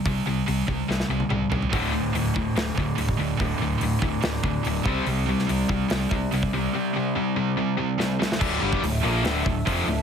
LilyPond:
<<
  \new Staff \with { instrumentName = "Analog synth pad" } { \time 4/4 \key c \major \tempo 4 = 144 r1 | r1 | r1 | r1 |
r1 | \key d \minor <d' a' e''>1 | }
  \new Staff \with { instrumentName = "Distorted electric guitar" } { \clef bass \time 4/4 \key c \major <c g>8 <c g>8 <c g>8 <c g>8 <c g>8 <c g>8 <c g>8 <c g>8 | <d, a, d>8 <d, a,>8 <d, a,>8 <d, a,>8 <d, a,>8 <d, a,>8 <d, a,>8 <d, a,>8 | <d, a,>8 <d, a,>8 <d, a,>8 <d, a,>8 <d, a,>8 <d, a,>8 <d, a,>8 <c g c'>8 | <c g>8 <c g>8 <c g>8 <c g>8 <c g>8 <c g>8 <c g>8 <c g>8 |
<c g>8 <c g>8 <c g>8 <c g>8 <c g>8 <c g>8 <c g>8 <c g>8 | \key d \minor <d, a, d>8 <g, d g>8 <d, a,>8 <bes, f bes>8 <d, a, d>8 <d, a,>8 <f, c f>8 <d, a,>8 | }
  \new Staff \with { instrumentName = "Overdriven electric guitar" } { \clef bass \time 4/4 \key c \major <c g>8 <c g>8 <c g>8 <c g>8 <c g>8 <c g>8 <c g>8 <c g>8 | <d, a, d>8 <d, a,>8 <d, a,>8 <d, a,>8 <d, a,>8 <d, a,>8 <d, a,>8 <d, a,>8 | <d, a,>8 <d, a,>8 <d, a,>8 <d, a,>8 <d, a,>8 <d, a,>8 <d, a,>8 <c g c'>8 | <c g>8 <c g>8 <c g>8 <c g>8 <c g>8 <c g>8 <c g>8 <c g>8 |
<c g>8 <c g>8 <c g>8 <c g>8 <c g>8 <c g>8 <c g>8 <c g>8 | \key d \minor <d, a, d>8 <g, d g>8 <d, a,>8 <bes, f bes>8 <d, a, d>8 <d, a,>8 <f, c f>8 <d, a,>8 | }
  \new Staff \with { instrumentName = "Overdriven electric guitar" } { \clef bass \time 4/4 \key c \major r1 | <d, a, d>1 | <d, a, d>2.~ <d, a, d>8 <c g c'>8~ | <c g c'>2.~ <c g c'>8 <c g c'>8~ |
<c g c'>2.~ <c g c'>8 r8 | \key d \minor <d, a, d>8 <g, d g>8 <d, a,>8 <bes, f bes>8 <d, a, d>8 <d, a,>8 <f, c f>8 <d, a,>8 | }
  \new Staff \with { instrumentName = "Fingered electric bass" } { \clef bass \time 4/4 \key c \major c,8 c,8 c,8 c,8 c,8 c,8 c,8 c,8 | d,,4 d,,8 d,,8 d,,8 d,,8 d,,8 d,,8 | d,,8 d,,8 d,,8 d,,8 d,,8 d,8 d,,8 c,8 | c,4 c,8 c,8 c,8 c,8 c,8 c,8 |
r1 | \key d \minor d,,8 g,,8 d,,8 bes,,8 d,,8 d,,8 f,,8 d,,8 | }
  \new DrumStaff \with { instrumentName = "Drums" } \drummode { \time 4/4 <hho bd>4 hho8 bd8 sn16 sn8 tommh16 toml8 tomfh16 tomfh16 | <hho bd>4 hho8 bd8 <hho sn>8 bd8 hho16 bd8. | <hho bd>4 hho8 bd8 <hho sn>8 bd8 hho8 bd8 | hho8. sn16 hho8 bd8 <hho sn>8 bd8 hho16 bd8. |
r4 r4 r4 sn8 sn16 sn16 | <cymc bd>8. bd16 hho4 <hho sn>8 bd8 <hho bd>4 | }
>>